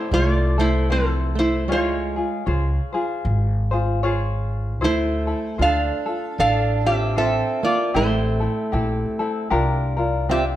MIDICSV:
0, 0, Header, 1, 5, 480
1, 0, Start_track
1, 0, Tempo, 783290
1, 1031, Time_signature, 4, 2, 24, 8
1, 6472, End_track
2, 0, Start_track
2, 0, Title_t, "Resonator guitar played with a steel bar"
2, 0, Program_c, 0, 25
2, 0, Note_on_c, 0, 64, 61
2, 0, Note_on_c, 0, 72, 83
2, 66, Note_off_c, 0, 64, 0
2, 83, Note_on_c, 0, 65, 77
2, 84, Note_off_c, 0, 72, 0
2, 84, Note_on_c, 0, 73, 97
2, 194, Note_off_c, 0, 73, 0
2, 194, Note_on_c, 0, 74, 97
2, 343, Note_off_c, 0, 65, 0
2, 364, Note_off_c, 0, 74, 0
2, 366, Note_on_c, 0, 72, 85
2, 372, Note_on_c, 0, 64, 70
2, 546, Note_off_c, 0, 64, 0
2, 562, Note_off_c, 0, 72, 0
2, 562, Note_on_c, 0, 60, 60
2, 564, Note_on_c, 0, 69, 81
2, 822, Note_off_c, 0, 69, 0
2, 823, Note_off_c, 0, 60, 0
2, 851, Note_on_c, 0, 72, 79
2, 855, Note_on_c, 0, 64, 63
2, 1027, Note_off_c, 0, 64, 0
2, 1044, Note_off_c, 0, 72, 0
2, 1054, Note_on_c, 0, 73, 84
2, 1058, Note_on_c, 0, 65, 62
2, 1498, Note_off_c, 0, 73, 0
2, 1500, Note_off_c, 0, 65, 0
2, 2967, Note_on_c, 0, 64, 70
2, 2971, Note_on_c, 0, 72, 94
2, 3414, Note_off_c, 0, 64, 0
2, 3446, Note_on_c, 0, 77, 92
2, 3449, Note_on_c, 0, 69, 79
2, 3455, Note_off_c, 0, 72, 0
2, 3895, Note_off_c, 0, 69, 0
2, 3914, Note_off_c, 0, 77, 0
2, 3920, Note_on_c, 0, 69, 80
2, 3923, Note_on_c, 0, 77, 107
2, 4181, Note_off_c, 0, 69, 0
2, 4204, Note_off_c, 0, 77, 0
2, 4206, Note_on_c, 0, 67, 71
2, 4207, Note_on_c, 0, 76, 91
2, 4381, Note_off_c, 0, 76, 0
2, 4382, Note_off_c, 0, 67, 0
2, 4398, Note_on_c, 0, 69, 71
2, 4400, Note_on_c, 0, 76, 97
2, 4660, Note_off_c, 0, 69, 0
2, 4683, Note_off_c, 0, 76, 0
2, 4685, Note_on_c, 0, 74, 82
2, 4688, Note_on_c, 0, 65, 63
2, 4863, Note_off_c, 0, 65, 0
2, 4877, Note_off_c, 0, 74, 0
2, 4880, Note_on_c, 0, 72, 80
2, 4884, Note_on_c, 0, 64, 60
2, 5809, Note_off_c, 0, 72, 0
2, 5811, Note_off_c, 0, 64, 0
2, 6318, Note_on_c, 0, 76, 90
2, 6323, Note_on_c, 0, 67, 72
2, 6394, Note_off_c, 0, 76, 0
2, 6398, Note_off_c, 0, 67, 0
2, 6472, End_track
3, 0, Start_track
3, 0, Title_t, "Ukulele"
3, 0, Program_c, 1, 24
3, 0, Note_on_c, 1, 69, 51
3, 347, Note_off_c, 1, 69, 0
3, 355, Note_on_c, 1, 69, 55
3, 361, Note_on_c, 1, 64, 51
3, 550, Note_off_c, 1, 69, 0
3, 553, Note_off_c, 1, 64, 0
3, 554, Note_on_c, 1, 72, 57
3, 562, Note_on_c, 1, 64, 62
3, 565, Note_on_c, 1, 69, 66
3, 1031, Note_off_c, 1, 69, 0
3, 1033, Note_on_c, 1, 73, 69
3, 1037, Note_off_c, 1, 64, 0
3, 1037, Note_on_c, 1, 65, 76
3, 1042, Note_on_c, 1, 68, 77
3, 1052, Note_off_c, 1, 72, 0
3, 1317, Note_off_c, 1, 68, 0
3, 1318, Note_off_c, 1, 73, 0
3, 1320, Note_off_c, 1, 65, 0
3, 1324, Note_on_c, 1, 68, 48
3, 1332, Note_on_c, 1, 65, 42
3, 1503, Note_off_c, 1, 65, 0
3, 1507, Note_off_c, 1, 68, 0
3, 1508, Note_on_c, 1, 73, 55
3, 1511, Note_on_c, 1, 65, 55
3, 1515, Note_on_c, 1, 68, 62
3, 1518, Note_on_c, 1, 72, 66
3, 1785, Note_off_c, 1, 72, 0
3, 1793, Note_on_c, 1, 72, 57
3, 1795, Note_off_c, 1, 68, 0
3, 1795, Note_off_c, 1, 73, 0
3, 1797, Note_off_c, 1, 65, 0
3, 1802, Note_on_c, 1, 68, 50
3, 1805, Note_on_c, 1, 65, 49
3, 2274, Note_off_c, 1, 72, 0
3, 2274, Note_on_c, 1, 72, 61
3, 2275, Note_off_c, 1, 68, 0
3, 2282, Note_on_c, 1, 68, 57
3, 2288, Note_off_c, 1, 65, 0
3, 2288, Note_on_c, 1, 65, 50
3, 2467, Note_off_c, 1, 65, 0
3, 2467, Note_off_c, 1, 72, 0
3, 2470, Note_on_c, 1, 73, 69
3, 2472, Note_off_c, 1, 68, 0
3, 2474, Note_on_c, 1, 65, 74
3, 2479, Note_on_c, 1, 68, 78
3, 2485, Note_on_c, 1, 72, 72
3, 2945, Note_off_c, 1, 73, 0
3, 2948, Note_off_c, 1, 72, 0
3, 2948, Note_on_c, 1, 72, 77
3, 2950, Note_off_c, 1, 65, 0
3, 2952, Note_on_c, 1, 64, 83
3, 2954, Note_off_c, 1, 68, 0
3, 2956, Note_on_c, 1, 69, 85
3, 3223, Note_off_c, 1, 69, 0
3, 3228, Note_off_c, 1, 64, 0
3, 3228, Note_off_c, 1, 72, 0
3, 3230, Note_on_c, 1, 69, 49
3, 3235, Note_on_c, 1, 64, 47
3, 3418, Note_off_c, 1, 69, 0
3, 3420, Note_on_c, 1, 72, 63
3, 3425, Note_on_c, 1, 65, 58
3, 3430, Note_off_c, 1, 64, 0
3, 3434, Note_on_c, 1, 69, 61
3, 3706, Note_off_c, 1, 69, 0
3, 3711, Note_off_c, 1, 72, 0
3, 3713, Note_off_c, 1, 65, 0
3, 3713, Note_on_c, 1, 69, 53
3, 3725, Note_on_c, 1, 65, 43
3, 4193, Note_off_c, 1, 69, 0
3, 4193, Note_on_c, 1, 69, 52
3, 4197, Note_off_c, 1, 65, 0
3, 4200, Note_on_c, 1, 64, 47
3, 4205, Note_on_c, 1, 65, 44
3, 4383, Note_off_c, 1, 65, 0
3, 4383, Note_off_c, 1, 69, 0
3, 4386, Note_on_c, 1, 72, 57
3, 4391, Note_on_c, 1, 65, 66
3, 4392, Note_off_c, 1, 64, 0
3, 4398, Note_on_c, 1, 69, 68
3, 4863, Note_off_c, 1, 72, 0
3, 4866, Note_on_c, 1, 67, 72
3, 4867, Note_off_c, 1, 65, 0
3, 4867, Note_off_c, 1, 69, 0
3, 4869, Note_on_c, 1, 60, 84
3, 4870, Note_on_c, 1, 64, 71
3, 4874, Note_on_c, 1, 69, 74
3, 5141, Note_off_c, 1, 69, 0
3, 5148, Note_off_c, 1, 64, 0
3, 5149, Note_on_c, 1, 69, 50
3, 5153, Note_off_c, 1, 67, 0
3, 5155, Note_off_c, 1, 60, 0
3, 5155, Note_on_c, 1, 64, 45
3, 5162, Note_on_c, 1, 60, 39
3, 5342, Note_off_c, 1, 60, 0
3, 5343, Note_on_c, 1, 67, 55
3, 5346, Note_off_c, 1, 69, 0
3, 5347, Note_off_c, 1, 64, 0
3, 5349, Note_on_c, 1, 60, 57
3, 5354, Note_on_c, 1, 64, 59
3, 5356, Note_on_c, 1, 69, 63
3, 5626, Note_off_c, 1, 69, 0
3, 5631, Note_off_c, 1, 67, 0
3, 5632, Note_off_c, 1, 64, 0
3, 5633, Note_on_c, 1, 69, 61
3, 5634, Note_off_c, 1, 60, 0
3, 5640, Note_on_c, 1, 64, 55
3, 5645, Note_on_c, 1, 60, 49
3, 5823, Note_on_c, 1, 67, 74
3, 5825, Note_off_c, 1, 60, 0
3, 5827, Note_off_c, 1, 64, 0
3, 5827, Note_off_c, 1, 69, 0
3, 5827, Note_on_c, 1, 62, 85
3, 5829, Note_on_c, 1, 65, 84
3, 5829, Note_on_c, 1, 70, 91
3, 6101, Note_off_c, 1, 70, 0
3, 6108, Note_on_c, 1, 70, 58
3, 6109, Note_off_c, 1, 65, 0
3, 6111, Note_off_c, 1, 67, 0
3, 6113, Note_off_c, 1, 62, 0
3, 6117, Note_on_c, 1, 65, 57
3, 6123, Note_on_c, 1, 62, 47
3, 6301, Note_off_c, 1, 62, 0
3, 6305, Note_off_c, 1, 70, 0
3, 6306, Note_on_c, 1, 67, 55
3, 6309, Note_off_c, 1, 65, 0
3, 6309, Note_on_c, 1, 62, 64
3, 6315, Note_on_c, 1, 65, 62
3, 6472, Note_off_c, 1, 62, 0
3, 6472, Note_off_c, 1, 65, 0
3, 6472, Note_off_c, 1, 67, 0
3, 6472, End_track
4, 0, Start_track
4, 0, Title_t, "Steel-string acoustic guitar"
4, 0, Program_c, 2, 25
4, 0, Note_on_c, 2, 57, 70
4, 63, Note_off_c, 2, 57, 0
4, 74, Note_on_c, 2, 56, 75
4, 178, Note_off_c, 2, 56, 0
4, 178, Note_on_c, 2, 57, 75
4, 338, Note_off_c, 2, 57, 0
4, 362, Note_on_c, 2, 57, 77
4, 540, Note_off_c, 2, 57, 0
4, 551, Note_on_c, 2, 53, 73
4, 817, Note_off_c, 2, 53, 0
4, 830, Note_on_c, 2, 57, 68
4, 1014, Note_off_c, 2, 57, 0
4, 1030, Note_on_c, 2, 56, 71
4, 1486, Note_off_c, 2, 56, 0
4, 2968, Note_on_c, 2, 57, 79
4, 3415, Note_off_c, 2, 57, 0
4, 3440, Note_on_c, 2, 62, 87
4, 3891, Note_off_c, 2, 62, 0
4, 3919, Note_on_c, 2, 62, 83
4, 4181, Note_off_c, 2, 62, 0
4, 4209, Note_on_c, 2, 60, 78
4, 4383, Note_off_c, 2, 60, 0
4, 4399, Note_on_c, 2, 60, 86
4, 4660, Note_off_c, 2, 60, 0
4, 4677, Note_on_c, 2, 58, 72
4, 4857, Note_off_c, 2, 58, 0
4, 4876, Note_on_c, 2, 57, 64
4, 5807, Note_off_c, 2, 57, 0
4, 6309, Note_on_c, 2, 60, 79
4, 6386, Note_off_c, 2, 60, 0
4, 6472, End_track
5, 0, Start_track
5, 0, Title_t, "Upright bass"
5, 0, Program_c, 3, 32
5, 70, Note_on_c, 3, 36, 92
5, 1030, Note_off_c, 3, 36, 0
5, 1030, Note_on_c, 3, 37, 97
5, 1343, Note_off_c, 3, 37, 0
5, 1512, Note_on_c, 3, 37, 91
5, 1698, Note_off_c, 3, 37, 0
5, 1990, Note_on_c, 3, 32, 93
5, 2949, Note_off_c, 3, 32, 0
5, 2949, Note_on_c, 3, 38, 91
5, 3261, Note_off_c, 3, 38, 0
5, 3426, Note_on_c, 3, 38, 84
5, 3613, Note_off_c, 3, 38, 0
5, 3914, Note_on_c, 3, 33, 87
5, 4536, Note_off_c, 3, 33, 0
5, 4870, Note_on_c, 3, 33, 95
5, 5181, Note_off_c, 3, 33, 0
5, 5350, Note_on_c, 3, 34, 90
5, 5535, Note_off_c, 3, 34, 0
5, 5828, Note_on_c, 3, 36, 84
5, 6472, Note_off_c, 3, 36, 0
5, 6472, End_track
0, 0, End_of_file